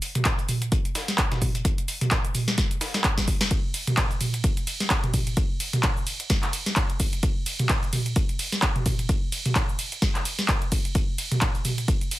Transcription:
0.02 closed hi-hat, open hi-hat, cabasa
0.15 closed hi-hat, mid tom, cabasa
0.25 kick, snare, clap, closed hi-hat, cabasa
0.39 closed hi-hat, cabasa
0.49 closed hi-hat, mid tom, open hi-hat, cabasa
0.62 closed hi-hat, cabasa
0.72 kick, closed hi-hat, cabasa
0.85 closed hi-hat, cabasa
0.95 snare, closed hi-hat, open hi-hat, cabasa
1.08 snare, closed hi-hat, cabasa
1.18 kick, clap, closed hi-hat, cabasa
1.32 snare, closed hi-hat, mid tom
1.42 kick, closed hi-hat, mid tom, open hi-hat, cabasa
1.55 closed hi-hat, cabasa
1.65 kick, closed hi-hat, cabasa
1.78 closed hi-hat, cabasa
1.88 closed hi-hat, open hi-hat, cabasa
2.01 closed hi-hat, mid tom, cabasa
2.11 kick, snare, clap, closed hi-hat, cabasa
2.25 closed hi-hat, cabasa
2.35 closed hi-hat, mid tom, open hi-hat, cabasa
2.48 snare, closed hi-hat, cabasa
2.58 kick, snare, closed hi-hat, cabasa
2.71 closed hi-hat, cabasa
2.81 snare, closed hi-hat, open hi-hat, cabasa
2.94 snare, closed hi-hat, cabasa
3.04 kick, clap, closed hi-hat, cabasa
3.18 kick, snare, closed hi-hat, cabasa
3.28 kick, closed hi-hat, open hi-hat, cabasa
3.41 snare, closed hi-hat, cabasa
3.51 kick, closed hi-hat, ride, cabasa
3.74 closed hi-hat, open hi-hat, ride, cabasa
3.87 closed hi-hat, mid tom, cabasa
3.97 kick, snare, clap, closed hi-hat, ride, cabasa
4.11 closed hi-hat, cabasa
4.21 closed hi-hat, mid tom, open hi-hat, ride, cabasa
4.34 closed hi-hat, cabasa
4.44 kick, closed hi-hat, ride, cabasa
4.57 closed hi-hat, cabasa
4.67 closed hi-hat, open hi-hat, ride, cabasa
4.80 snare, closed hi-hat, cabasa
4.90 kick, snare, clap, closed hi-hat, ride, cabasa
5.04 closed hi-hat, mid tom
5.14 kick, closed hi-hat, mid tom, open hi-hat, ride, cabasa
5.27 closed hi-hat, cabasa
5.37 kick, closed hi-hat, ride, cabasa
5.60 closed hi-hat, open hi-hat, ride, cabasa
5.73 closed hi-hat, mid tom, cabasa
5.83 kick, snare, clap, closed hi-hat, ride, cabasa
5.97 cabasa
6.07 closed hi-hat, open hi-hat, ride, cabasa
6.20 closed hi-hat, cabasa
6.30 kick, snare, closed hi-hat, ride, cabasa
6.43 snare, clap, closed hi-hat, cabasa
6.53 closed hi-hat, open hi-hat, ride, cabasa
6.66 snare, closed hi-hat, cabasa
6.76 kick, snare, clap, closed hi-hat, ride, cabasa
6.90 closed hi-hat
7.00 kick, closed hi-hat, open hi-hat, ride, cabasa
7.13 closed hi-hat, cabasa
7.23 kick, closed hi-hat, ride, cabasa
7.46 closed hi-hat, open hi-hat, ride, cabasa
7.59 closed hi-hat, mid tom, cabasa
7.69 kick, snare, clap, closed hi-hat, ride, cabasa
7.83 closed hi-hat, cabasa
7.93 closed hi-hat, mid tom, open hi-hat, ride, cabasa
8.06 closed hi-hat, cabasa
8.16 kick, closed hi-hat, ride, cabasa
8.29 closed hi-hat, cabasa
8.39 closed hi-hat, open hi-hat, ride, cabasa
8.52 snare, closed hi-hat, cabasa
8.62 kick, snare, clap, closed hi-hat, ride, cabasa
8.76 closed hi-hat, mid tom
8.86 kick, closed hi-hat, mid tom, open hi-hat, ride, cabasa
8.99 closed hi-hat, cabasa
9.09 kick, closed hi-hat, ride, cabasa
9.32 closed hi-hat, open hi-hat, ride, cabasa
9.46 closed hi-hat, mid tom, cabasa
9.55 kick, snare, clap, closed hi-hat, ride, cabasa
9.69 cabasa
9.79 closed hi-hat, open hi-hat, ride, cabasa
9.92 closed hi-hat, cabasa
10.02 kick, snare, closed hi-hat, ride, cabasa
10.15 snare, clap, closed hi-hat, cabasa
10.25 closed hi-hat, open hi-hat, ride, cabasa
10.39 snare, closed hi-hat, cabasa
10.48 kick, snare, clap, closed hi-hat, ride, cabasa
10.62 closed hi-hat
10.72 kick, closed hi-hat, open hi-hat, ride, cabasa
10.85 closed hi-hat, cabasa
10.95 kick, closed hi-hat, ride, cabasa
11.18 closed hi-hat, open hi-hat, ride, cabasa
11.32 closed hi-hat, mid tom, cabasa
11.41 kick, snare, clap, closed hi-hat, ride, cabasa
11.55 closed hi-hat, cabasa
11.65 closed hi-hat, mid tom, open hi-hat, ride, cabasa
11.78 closed hi-hat, cabasa
11.88 kick, closed hi-hat, ride, cabasa
12.01 closed hi-hat, cabasa
12.11 closed hi-hat, open hi-hat, ride, cabasa

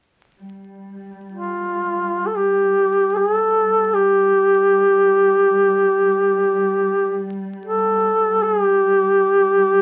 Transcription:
0.38 G3
1.33 F4
2.26 A4
2.36 G4
3.17 G#4
3.36 A4
3.94 G4
7.65 A4
8.44 G#4
8.63 G4

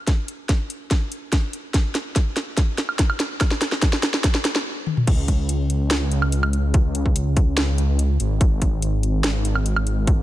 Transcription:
0.07 kick, snare, closed hi-hat
0.28 closed hi-hat
0.49 kick, snare, closed hi-hat
0.70 closed hi-hat
0.91 kick, snare, closed hi-hat
1.12 closed hi-hat
1.32 kick, snare, closed hi-hat
1.53 closed hi-hat
1.74 kick, snare, closed hi-hat
1.95 snare, closed hi-hat
2.16 kick, snare, closed hi-hat
2.37 snare, closed hi-hat
2.57 kick, snare, closed hi-hat
2.78 snare, closed hi-hat
2.89 high woodblock
2.99 kick, snare, closed hi-hat
3.10 high woodblock
3.20 snare, closed hi-hat
3.41 kick, snare, closed hi-hat, high woodblock
3.51 snare
3.62 snare, closed hi-hat
3.72 snare
3.82 kick, snare, closed hi-hat
3.93 snare
4.03 snare, closed hi-hat
4.14 snare
4.24 kick, snare, closed hi-hat
4.35 snare
4.45 snare, closed hi-hat
4.56 snare
4.87 high tom
4.97 mid tom
5.07 C#2, kick, closed hi-hat, crash
5.28 kick, closed hi-hat
5.49 closed hi-hat
5.70 closed hi-hat
5.91 snare, closed hi-hat
6.12 closed hi-hat
6.22 high woodblock
6.32 closed hi-hat
6.43 high woodblock
6.53 closed hi-hat
6.74 kick, closed hi-hat
6.95 closed hi-hat
7.06 kick
7.16 closed hi-hat
7.37 kick, closed hi-hat
7.57 snare, closed hi-hat
7.78 closed hi-hat
7.99 closed hi-hat
8.20 G#1, closed hi-hat
8.41 kick, closed hi-hat
8.62 kick, closed hi-hat
8.82 closed hi-hat
9.03 closed hi-hat
9.24 snare, closed hi-hat
9.45 closed hi-hat
9.55 high woodblock
9.66 closed hi-hat
9.76 high woodblock
9.87 closed hi-hat
10.07 kick, closed hi-hat

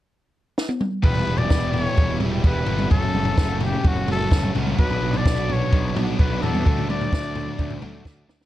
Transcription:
0.58 snare
0.69 high tom
0.81 mid tom
1.02 E1 E2 B2 E3 G3 B3 G4 B4, kick, floor tom
1.06 E4
1.15 floor tom
1.27 E1 G3 B3 E4
1.38 D5, floor tom
1.49 E1 E2 B2 E3 G3 B3 E4 G4, kick, snare
1.72 D5, floor tom
1.83 C#5
1.95 E1 E3 G3 B3 E4, kick, floor tom
2.19 E1 G3 B3 E4 G4, floor tom, mid tom
2.24 E3
2.42 E1 E3 G3 B3 E4 G4 B4, kick
2.66 G1 E3 B3 E4 G4, floor tom
2.70 G3
2.79 mid tom
2.90 F#1 F#2 C#3 F#3 A3 C#4 F#4 A4, kick, floor tom
3.02 floor tom
3.14 F#1 F#3 A3 C#4, mid tom
3.25 floor tom
3.36 F#1 F#2 C#3 F#3 F#4, kick, snare
3.40 A3 C#4
3.61 G4, floor tom
3.84 F#1 F#2 C#3 F#3 A3 C#4 F#4, kick, floor tom
3.96 floor tom
4.07 F#1 A3 C#4 F#4, floor tom, mid tom
4.12 F#3 A4
4.31 F#1 C#3 F#3 A3 C#4 F#4, kick, snare
4.43 floor tom, mid tom
4.53 C#2 C#4 F#4, floor tom
4.57 F#3 A3
4.67 mid tom
4.78 B1 B2 F#3 B3 D4 F#4 B4, kick, floor tom
4.90 floor tom
5.02 B1 B3 D4
5.06 F#3
5.14 D5, floor tom
5.26 B1 B2 F#3 B3 D4 F#4, kick, snare
5.50 C#5, floor tom
5.71 B1 B2 F#3 B3 D4, kick, floor tom
5.94 B1 F#3 B3 D4 F#4, floor tom, mid tom
6.18 B1 B2 F#3 B3 D4 F#4 B4, kick
6.41 E2 F#3 B3 D4 F#4 A4, floor tom
6.55 mid tom
6.64 D2 D3 F#3 A3 D4, kick, floor tom
6.68 F#4
6.78 floor tom
6.87 D2 F#3 A3 D4 D5, mid tom
7.01 floor tom
7.10 D2 D3 F#3 A3 D4 F#4, kick, snare
7.35 floor tom
7.57 D2 D3 F#3 A3 D4, kick, floor tom
7.70 floor tom
7.81 D2 F#3 A3 D4 F#4, floor tom, mid tom
8.05 D2 D3 F#3 A3 D4 F#4, kick, snare
8.27 D2 F#3 A3 D4 F#4, snare
8.41 snare

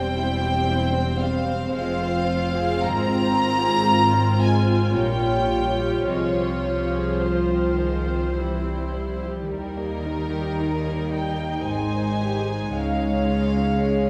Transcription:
Already playing: E1 E2 G3 C4 C5 G5
0.19 E4
0.44 G4
0.71 E4
0.96 C4
1.21 G3 F5
1.49 C4
1.73 F1 F2 G#3 C4 F4 F5
2.00 C4
2.28 F4
2.56 G#4
2.82 G#1 G#2 G#3 A#5
3.11 C4
3.36 F4
3.63 G#4
3.88 F4
4.13 C4
4.41 G#3 G#5
4.68 C4
4.95 A#1 A#2 G3 A#3 C#5 G5
5.25 C#4
5.51 F4
5.81 G4
6.06 C2 C3 F3 G#3 C5 C#5
6.37 C4
6.67 F4
6.95 G#4
7.20 F3 F4 C5
7.51 C4
7.77 D#3 G#3
8.06 C4
8.33 E3 G3 E4
8.65 C4
8.92 F3 E4
9.25 G4
9.49 D#2 D#3 G3 D#4 A#4
9.79 A#3
10.06 D#4
10.31 G4
10.59 D#4
10.86 A#3
11.13 G3 G5
11.40 A#3
11.68 G#1 G#2 G#3 C4 C5 G#5
11.97 D#4
12.24 G4
12.52 G#4
12.74 C#2 C#3 G#3 C#5 F5
13.02 C#4
13.29 F4
13.55 C#4
13.79 G#3 C#4
14.06 C#4

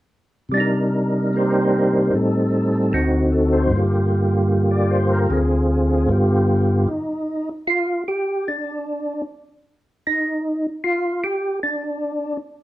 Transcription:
0.49 C3 G3
0.54 D4 D#4
0.60 A#4
1.33 A#3 D#4 G4 C5
2.13 A2 G3 C4 D#4 A4
2.93 D2 D3 C4 D#4 F#4
3.32 A4
3.53 C5
3.67 G2 D3
3.73 A#3 F4
3.79 G4
4.71 D5
4.91 C5
5.12 A#4
5.30 D2 D3 C4 F4 G#4
6.07 G2 D3 B3 F4
6.12 G4
6.88 D#4
7.67 F4
8.08 G4
8.48 D4
10.07 D#4
10.84 F4
11.24 G4
11.63 D4

